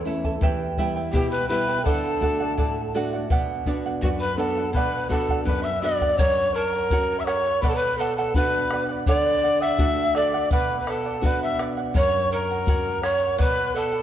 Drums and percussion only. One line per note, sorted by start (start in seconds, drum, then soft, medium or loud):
0.24 bombo low medium
0.42 bombo low medium
0.77 bombo low medium
1.14 bombo low medium
1.86 bombo low medium
2.22 bombo low medium
2.58 bombo low medium
3.30 bombo low medium
3.66 bombo low medium
4.02 bombo low medium
4.74 bombo low medium
5.11 bombo low medium
5.29 bombo low soft
5.47 bombo low medium
6.01 bombo low soft
6.19 bombo low medium
6.19 shaker medium
6.90 bombo low medium
6.90 shaker medium
7.27 bombo rim soft
7.63 bombo low medium
7.63 shaker medium
8.34 bombo low medium
8.34 shaker medium
8.71 bombo rim medium
9.06 bombo low medium
9.06 shaker medium
9.79 bombo low medium
9.79 shaker medium
10.15 bombo rim soft
10.50 bombo low medium
10.50 shaker medium
10.87 bombo rim medium
11.23 bombo low medium
11.23 shaker medium
11.59 bombo rim medium
11.94 bombo low medium
11.94 shaker medium
12.67 bombo low medium
12.67 shaker medium
13.03 bombo rim medium
13.38 bombo low medium
13.38 shaker medium